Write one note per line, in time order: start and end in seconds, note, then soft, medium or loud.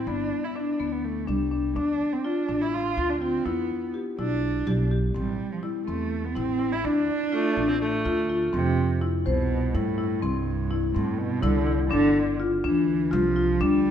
0.07 0.30 G1 medium
0.07 0.49 B3 medium
0.07 0.46 D4 medium
0.45 0.58 E4 medium
0.56 0.77 D4 medium
0.56 0.94 D4 medium
0.79 1.26 D2 medium
0.79 1.22 B3 medium
0.92 1.06 B3 medium
1.05 1.30 A3 medium
1.27 1.74 C2 medium
1.27 1.78 G3 medium
1.27 1.49 D4 medium
1.51 1.73 D4 medium
1.76 1.99 D2 medium
1.76 2.18 D4 medium
1.76 2.15 D4 medium
2.13 2.27 C4 medium
2.24 2.63 D4 medium
2.24 2.46 F4 medium
2.49 2.95 A1 medium
2.49 2.91 D4 medium
2.62 2.76 E4 medium
2.75 3.11 F4 medium
2.97 3.43 D2 loud
2.97 3.18 F4 medium
3.10 3.21 D4 medium
3.22 3.48 C4 medium
3.22 3.43 F4 medium
3.46 3.69 E2 medium
3.46 3.95 B3 medium
3.46 3.88 E4 medium
3.94 4.15 G4 medium
4.19 4.64 B1 medium
4.19 4.87 D4 medium
4.19 4.61 E4 medium
4.67 5.13 B1 loud
4.67 4.88 G4 medium
4.91 5.12 G4 medium
5.15 5.38 A1 loud
5.15 5.54 G3 medium
5.15 5.57 C4 medium
5.52 5.65 F3 medium
5.63 5.87 G3 medium
5.63 5.84 E4 medium
5.88 6.34 E2 medium
5.88 6.27 A3 medium
5.88 6.30 C4 medium
6.25 6.38 B3 medium
6.35 6.82 A1 loud
6.35 6.74 C4 loud
6.35 6.57 E4 medium
6.59 6.81 E4 medium
6.73 6.87 E4 loud
6.84 7.08 D2 medium
6.84 7.26 D4 medium
6.84 8.06 D4 loud
7.32 7.70 A3 medium
7.32 7.54 F4 medium
7.57 8.03 A1 medium
7.57 7.99 D4 medium
7.68 7.81 C4 loud
7.81 8.50 A3 medium
8.05 8.51 D2 loud
8.05 8.26 F4 medium
8.29 8.50 F4 medium
8.53 9.22 F2 loud
8.53 8.99 C3 loud
8.53 8.95 C4 medium
9.01 9.23 E4 medium
9.26 9.72 C2 medium
9.26 9.76 B2 medium
9.26 9.68 C5 medium
9.75 10.20 G2 loud
9.75 10.25 A2 medium
9.75 9.96 E4 medium
9.98 10.19 E4 medium
10.23 10.91 C2 loud
10.23 10.95 G2 loud
10.23 10.65 C4 loud
10.71 10.92 E4 medium
10.95 11.41 G2 loud
10.95 11.20 A2 medium
10.95 11.37 C4 medium
11.19 11.45 B2 loud
11.43 11.89 C2 loud
11.43 11.80 D3 loud
11.43 11.64 E4 medium
11.67 11.88 E4 medium
11.91 12.60 G1 loud
11.91 12.36 D3 loud
11.91 12.33 D4 medium
12.40 12.61 F4 medium
12.64 13.10 D2 medium
12.64 13.14 E3 loud
12.64 13.06 D4 medium
13.11 13.58 C2 loud
13.11 13.63 F3 loud
13.11 13.33 F4 medium
13.36 13.57 F4 medium
13.61 13.91 D2 loud
13.61 13.91 G3 loud
13.61 13.91 D4 loud